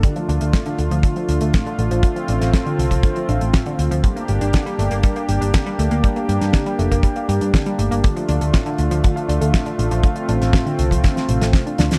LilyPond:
<<
  \new Staff \with { instrumentName = "Analog synth pad" } { \time 4/4 \key d \phrygian \tempo 4 = 120 << { <a f'>1~ | <a f'>1 | <bes g'>1~ | <bes g'>1 |
<a f'>1~ | <a f'>1 | } \\ { d'1 | c'1 | d'1~ | d'1~ |
d'1 | c'1 | } >> }
  \new Staff \with { instrumentName = "Synth arpeggio sound" } { \clef bass \time 4/4 \key d \phrygian d16 f16 d'16 a16 a,16 d16 d16 f16 d16 f16 d'16 a16 a,16 d16 d16 f16 | d16 f16 d'16 a16 a,16 d16 d16 f16 d16 f16 d'16 a16 a,16 d16 d16 f16 | g16 bes16 g'16 d'16 d16 g16 a16 bes16 g16 bes16 g'16 d'16 d16 g16 a16 bes16 | g16 bes16 g'16 d'16 d16 g16 a16 bes16 g16 bes16 g'16 d'16 d16 g16 a16 bes16 |
d16 f16 d'16 a16 a,16 d16 d16 f16 d16 f16 d'16 a16 a,16 d16 d16 f16 | d16 f16 d'16 a16 a,16 d16 d16 f16 d16 f16 c16 a16 c16 d'16 d'16 d16 | }
  \new Staff \with { instrumentName = "Picked electric bass" } { \clef bass \time 4/4 \key d \phrygian r8 d,16 d,16 r8 d,16 d,16 r8 d,16 d,16 r8 a,,16 a,,16 | r8 a,,16 a,,16 r8 c,16 c,16 r8 a,,16 a,,16 r8 d,16 d,16 | r8 g,,16 g,,16 r8 g,,16 g,,16 r8 g,,16 g,,16 r8 d,16 d,16 | r8 g,16 g,16 r8 f,,16 f,,16 r8 g,16 g,16 r8 g,,16 g,,16 |
r8 d,16 d,16 r8 d,16 d,16 r8 d,16 d,16 r8 a,,16 a,,16 | r8 a,,16 a,,16 r8 c,16 c,16 r8 a,,16 a,,16 r8 d,16 d,16 | }
  \new DrumStaff \with { instrumentName = "Drums" } \drummode { \time 4/4 <hh bd>16 hh16 hh16 hh16 <hh bd sn>16 hh16 hh16 hh16 <hh bd>16 hh16 hh16 hh16 <hh bd sn>16 hh16 hh16 hh16 | <hh bd>16 hh16 hh16 <hh sn>16 <hh bd sn>16 hh16 hh16 <hh bd>16 <hh bd>16 hh16 hh16 hh16 <hh bd sn>16 hh16 hh16 hh16 | <hh bd>16 hh16 hh16 hh16 <hh bd sn>16 hh16 hh16 hh16 <hh bd>16 hh16 hh16 hh16 <hh bd sn>16 hh16 hh16 hh16 | <hh bd>16 hh16 hh16 <hh sn>16 <hh bd sn>16 hh16 hh16 <hh bd>16 <hh bd>16 hh16 hh16 hh16 <hh bd sn>16 hh16 hh16 hh16 |
<hh bd>16 hh16 hh16 hh16 <hh bd sn>16 hh16 hh16 hh16 <hh bd>16 hh16 hh16 hh16 <hh bd sn>16 hh16 hh16 hh16 | <hh bd>16 hh16 hh16 <hh sn>16 <hh bd sn>16 hh16 hh16 <hh bd>16 <hh bd sn>16 <hh sn>16 hh16 <hh sn>16 <hh bd sn>16 hh16 <hh sn>16 <hh sn>16 | }
>>